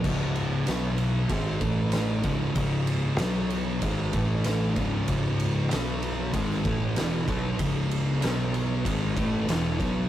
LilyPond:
<<
  \new Staff \with { instrumentName = "Distorted electric guitar" } { \clef bass \time 4/4 \key cis \minor \tempo 4 = 95 <cis, gis, cis>4 <b, fis b>4 <gis, dis gis>8 <a, e a>4 <cis, gis, cis>8 | <cis, gis, cis>4 <b, fis b>4 <gis, dis gis>8 <a, e a>4 <cis, gis, cis>8 | <cis, gis, cis>4 <b, fis b>4 <gis, dis gis>8 <a, e a>8 <e, b, e>8 <b, fis b>8 | <cis, gis, cis>4 <b, fis b>4 <gis, dis gis>8 <a, e a>8 <e, b, e>8 <b, fis b>8 | }
  \new Staff \with { instrumentName = "Distorted electric guitar" } { \clef bass \time 4/4 \key cis \minor <cis, gis, cis>4 <b, fis b>4 <gis, dis gis>8 <a, e a>4 <cis, gis, cis>8 | <cis, gis, cis>4 <b, fis b>4 <gis, dis gis>8 <a, e a>4 <cis, gis, cis>8 | <cis, gis, cis>4 <b, fis b>4 <gis, dis gis>8 <a, e a>8 <e, b, e>8 <b, fis b>8 | <cis, gis, cis>4 <b, fis b>4 <gis, dis gis>8 <a, e a>8 <e, b, e>8 <b, fis b>8 | }
  \new Staff \with { instrumentName = "Fingered electric bass" } { \clef bass \time 4/4 \key cis \minor cis,,4 b,,4 gis,,8 a,,4 cis,,8 | cis,,4 b,,4 gis,,8 a,,4 cis,,8 | cis,,4 b,,4 gis,,8 a,,8 e,,8 b,,8 | cis,,4 b,,4 gis,,8 a,,8 e,,8 b,,8 | }
  \new DrumStaff \with { instrumentName = "Drums" } \drummode { \time 4/4 <cymc bd>8 cymr8 <cymr sn>8 cymr8 <bd cymr>8 <bd cymr>8 <cymr sn>8 <bd cymr>8 | <bd cymr>8 cymr8 <cymr sn>8 cymr8 <bd cymr>8 <bd cymr>8 <cymr sn>8 <bd cymr>8 | <bd cymr>8 cymr8 <cymr sn>8 cymr8 <bd cymr>16 sn16 <bd cymr>8 <cymr sn>8 <bd cymr>8 | <bd cymr>8 cymr8 <cymr sn>8 cymr8 <bd cymr>8 <bd cymr>8 <cymr sn>8 <bd cymr>8 | }
>>